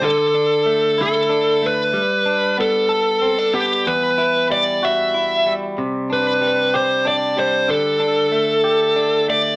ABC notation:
X:1
M:6/8
L:1/16
Q:3/8=63
K:Dmix
V:1 name="Lead electric guitar"
A6 A4 B2- | B4 A6 G2 | B4 d2 e4 z2 | z2 B4 c2 d2 c2 |
A8- A2 d2 |]
V:2 name="Clean electric guitar"
D,2 D2 A,2 E2 D2 A,2 | G,2 D2 B,2 A2 C D B,2 | E,,2 E2 G,2 F2 E2 G,2 | C,2 D2 G,2 G2 D2 G,2 |
D,2 D2 A,2 G2 D2 A,2 |]